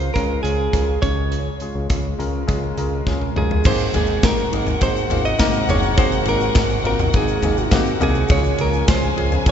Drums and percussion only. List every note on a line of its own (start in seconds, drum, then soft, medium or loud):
0.00 closed hi-hat soft
0.15 kick medium
0.15 closed hi-hat medium
0.45 closed hi-hat medium
0.73 kick medium
0.73 closed hi-hat medium
1.03 kick medium
1.03 closed hi-hat medium
1.32 closed hi-hat medium
1.60 closed hi-hat medium
1.90 kick medium
1.90 closed hi-hat medium
2.20 closed hi-hat medium
2.48 kick medium
2.48 closed hi-hat medium
2.78 closed hi-hat medium
3.07 kick medium
3.07 snare soft
3.21 high tom soft
3.36 mid tom medium
3.51 floor tom medium
3.64 kick loud
3.64 crash medium
3.64 shaker medium
3.79 shaker medium
3.93 floor tom medium
3.93 ride medium
3.93 shaker medium
4.07 shaker soft
4.23 kick loud
4.23 snare loud
4.23 ride medium
4.23 shaker medium
4.37 shaker soft
4.53 ride medium
4.67 floor tom medium
4.67 shaker medium
4.81 kick medium
4.81 ride medium
4.81 shaker medium
4.96 shaker soft
5.10 floor tom medium
5.10 ride medium
5.10 shaker soft
5.25 shaker soft
5.39 kick loud
5.39 snare loud
5.39 ride medium
5.39 shaker medium
5.53 shaker medium
5.68 floor tom medium
5.68 ride medium
5.68 shaker medium
5.82 shaker soft
5.97 kick loud
5.97 ride medium
5.97 shaker medium
6.12 shaker medium
6.25 ride medium
6.25 shaker soft
6.41 shaker soft
6.55 kick loud
6.55 snare loud
6.55 ride medium
6.55 shaker medium
6.70 shaker soft
6.85 ride medium
6.99 floor tom medium
6.99 shaker soft
7.13 kick medium
7.13 ride medium
7.13 shaker medium
7.28 shaker medium
7.42 floor tom medium
7.42 ride medium
7.42 shaker soft
7.57 shaker medium
7.71 kick loud
7.71 snare loud
7.71 ride medium
7.71 shaker medium
7.86 shaker medium
8.01 floor tom medium
8.01 ride medium
8.01 shaker medium
8.15 shaker soft
8.28 kick loud
8.28 ride medium
8.28 shaker medium
8.44 shaker medium
8.58 ride medium
8.58 shaker medium
8.73 shaker soft
8.88 kick loud
8.88 snare loud
8.88 ride medium
8.88 shaker medium
9.03 shaker soft
9.18 ride medium
9.32 floor tom medium
9.32 shaker medium
9.46 kick loud
9.46 ride medium
9.46 shaker medium